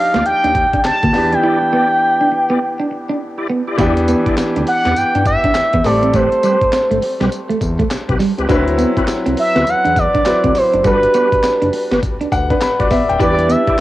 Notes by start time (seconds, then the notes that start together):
Already playing: F3 D4 D#4 G4 F5
0.14 D2 A#3 F4 G4 D5, snare, closed hi-hat
0.26 G5, closed hi-hat
0.44 D#2 D4, closed hi-hat
0.55 muted clean electric guitar stroke, kick, closed hi-hat
0.73 D4, kick, closed hi-hat
0.84 D2 A5, snare, clap, closed hi-hat
1.03 D2 A#3, kick, closed hi-hat
1.13 E2 E3 B3 D4 G4, muted clean electric guitar stroke, snare, open hi-hat
1.33 D4 G5, closed hi-hat
1.43 E4 G4 D5
1.62 muted clean electric guitar stroke
1.72 B3 E4 G4 D5
2.21 D4
2.32 muted clean electric guitar stroke
2.50 B3 E4 G4 D5
2.80 D4
2.91 muted clean electric guitar stroke
3.09 D4
3.38 E4 G4 D5
3.50 B3
3.68 E4 G4 D5
3.78 E2 E3 B3 D4 E4 G4 D5, kick, closed hi-hat, tambourine
3.97 muted clean electric guitar stroke, closed hi-hat
4.08 B3, closed hi-hat, tambourine
4.26 E4 G4 D5, kick, closed hi-hat
4.38 snare, clap, closed hi-hat, tambourine
4.56 D2 D4, closed hi-hat
4.67 F#5, muted clean electric guitar stroke, open hi-hat
4.85 E2 B3 E4 G4 D5, snare, closed hi-hat
4.96 G2 G5, closed hi-hat, tambourine
5.15 G2 D4, closed hi-hat
5.26 E5, muted clean electric guitar stroke, kick, closed hi-hat, tambourine
5.44 D4, kick, closed hi-hat
5.55 E2, snare, clap, closed hi-hat, tambourine
5.73 E2 B3, kick, closed hi-hat
5.84 A1 G3 A3 C4 A4 D5, muted clean electric guitar stroke, snare, open hi-hat, tambourine
6.03 C4, closed hi-hat
6.13 A3 C4 G4 B4 C5, kick, closed hi-hat, tambourine
6.32 muted clean electric guitar stroke, closed hi-hat
6.43 G3 C4 G4 B4, closed hi-hat, tambourine
6.62 G1, kick, closed hi-hat
6.73 snare, clap, closed hi-hat, tambourine
6.91 G1 A3, closed hi-hat
7.02 muted clean electric guitar stroke, open hi-hat
7.20 B1 G3 C4 G4 B4, snare, closed hi-hat
7.32 closed hi-hat, tambourine
7.49 E2 A3, closed hi-hat
7.61 E2, muted clean electric guitar stroke, kick, closed hi-hat, tambourine
7.79 A3, kick, closed hi-hat
7.91 B1, snare, clap, closed hi-hat, tambourine
8.08 B1 C4 G4 B4, kick, closed hi-hat
8.19 G3, snare, open hi-hat, tambourine
8.38 C#2 C4 G4 B4, closed hi-hat
8.48 D2 F#3 C4 D4 E4 F#4 B4, kick, closed hi-hat, tambourine
8.67 muted clean electric guitar stroke, closed hi-hat
8.78 B3, closed hi-hat, tambourine
8.96 C4 E4 F#4 B4, kick, closed hi-hat
9.08 snare, clap, closed hi-hat, tambourine
9.26 C2 C4, closed hi-hat
9.37 E5, muted clean electric guitar stroke, open hi-hat
9.55 D2 B3 C4 E4 F#4 B4, snare, closed hi-hat
9.67 F#5, closed hi-hat, tambourine
9.85 E2 D4, closed hi-hat
9.96 D5, muted clean electric guitar stroke, kick, closed hi-hat, tambourine
10.15 D4, kick, closed hi-hat
10.26 D2 F#3 C4 E4 B4, snare, clap, closed hi-hat, tambourine
10.44 D2 C4, kick, closed hi-hat
10.55 C5, muted clean electric guitar stroke, snare, open hi-hat, tambourine
10.74 F#1 D4, closed hi-hat
10.83 G1 G3 D4 F#4 G4 A4 B4, kick, closed hi-hat, tambourine
10.92 B4
11.03 muted clean electric guitar stroke, closed hi-hat
11.14 B3 F#4 G4 B4, closed hi-hat, tambourine
11.32 F#1, kick, closed hi-hat
11.43 snare, clap, closed hi-hat, tambourine
11.62 F#1 D4, closed hi-hat
11.73 muted clean electric guitar stroke, open hi-hat
11.91 G1 B3 F#4 G4 B4, snare, closed hi-hat
12.02 kick, closed hi-hat, tambourine
12.21 D2 D4, closed hi-hat
12.32 D2 F#5, muted clean electric guitar stroke, kick, closed hi-hat, tambourine
12.50 D4 B4, kick, closed hi-hat
12.61 G1 B5, snare, clap, closed hi-hat, tambourine
12.79 G1 F#4 G4 B4 D5, kick, closed hi-hat
12.91 B3 E5, kick, snare, open hi-hat, tambourine
13.09 D#1 G5, closed hi-hat
13.19 E2 G3 D4 E4 G4 B4 D5, kick, closed hi-hat, tambourine
13.38 muted clean electric guitar stroke, closed hi-hat
13.49 B3 E5, closed hi-hat, tambourine
13.67 E4 G4 D5, kick, closed hi-hat